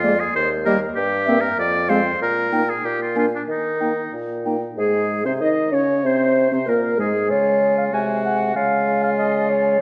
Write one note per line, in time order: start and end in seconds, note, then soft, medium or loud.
0.00 0.23 F2 medium
0.00 0.14 A#3 medium
0.00 0.21 F4 medium
0.00 0.18 D5 medium
0.04 0.15 G#3 medium
0.20 0.35 G#4 medium
0.35 0.86 D#2 medium
0.35 0.49 C5 medium
0.66 0.77 G3 medium
0.66 0.77 A#3 medium
0.66 0.79 A#4 medium
0.66 0.80 D#5 medium
0.95 1.48 G2 medium
0.95 1.42 G4 medium
1.26 1.39 A#3 medium
1.26 1.38 C4 medium
1.26 1.41 E5 medium
1.41 1.57 A#4 medium
1.58 2.10 F2 medium
1.58 1.91 D5 medium
1.89 2.00 G#3 medium
1.89 2.01 C4 medium
1.89 2.21 C5 medium
1.89 2.04 F5 medium
2.21 2.74 A#2 medium
2.21 2.71 A#4 medium
2.52 2.63 A#3 medium
2.52 2.64 D#4 medium
2.52 2.67 G5 medium
2.70 2.87 G#4 medium
2.85 3.38 A#2 soft
2.85 3.01 G4 medium
3.02 3.17 F4 medium
3.16 3.27 A#3 medium
3.16 3.27 D4 soft
3.16 3.26 F4 medium
3.16 3.31 G#5 soft
3.35 3.42 D4 soft
3.48 4.02 D#3 soft
3.48 4.13 D#4 soft
3.80 3.92 A#3 soft
3.80 3.92 D#4 soft
3.80 3.96 G5 soft
4.13 4.67 A#2 soft
4.45 4.57 A#3 soft
4.45 4.57 D#4 soft
4.45 4.61 G5 soft
4.77 5.27 G#2 medium
4.77 5.23 G#3 medium
4.77 5.27 G#4 medium
4.77 5.23 G#4 medium
5.25 5.42 C3 soft
5.25 5.32 C4 soft
5.25 5.40 C5 medium
5.25 5.42 C5 medium
5.25 5.33 C5 medium
5.40 5.72 D#3 medium
5.40 5.74 D#4 medium
5.40 5.71 D#5 medium
5.40 5.49 D#5 medium
5.40 5.76 D#5 medium
5.71 6.06 C#3 medium
5.71 6.05 C#4 medium
5.71 5.86 C#5 medium
5.71 6.08 C#5 medium
5.71 5.81 C#5 medium
6.03 6.51 C3 medium
6.03 6.51 C4 medium
6.03 6.50 C5 medium
6.03 6.53 C5 medium
6.51 6.67 C3 medium
6.51 6.59 C4 soft
6.51 6.68 C5 medium
6.51 6.57 C5 soft
6.51 6.70 C5 medium
6.65 6.99 A#2 soft
6.65 6.97 A#3 medium
6.65 6.73 A#4 medium
6.65 7.00 A#4 medium
6.65 6.99 A#4 medium
6.97 7.30 G#2 medium
6.97 7.12 G#3 medium
6.97 7.04 G#4 medium
6.97 7.32 G#4 medium
6.97 7.30 G#4 medium
7.28 7.95 C#3 soft
7.28 7.88 G#3 soft
7.28 7.95 F4 soft
7.28 7.77 C#5 medium
7.28 7.88 G#5 soft
7.78 7.85 F5 medium
7.92 8.55 C3 soft
7.92 8.55 G#3 medium
7.92 8.56 F#4 soft
7.92 8.54 G#5 medium
7.92 8.08 G#5 medium
8.25 8.55 F#5 medium
8.54 9.78 C#3 medium
8.54 9.78 G#3 medium
8.54 9.78 F4 medium
8.54 9.02 F5 medium
8.54 9.78 G#5 medium
9.03 9.10 F5 medium
9.18 9.51 D#5 medium
9.49 9.80 C#5 medium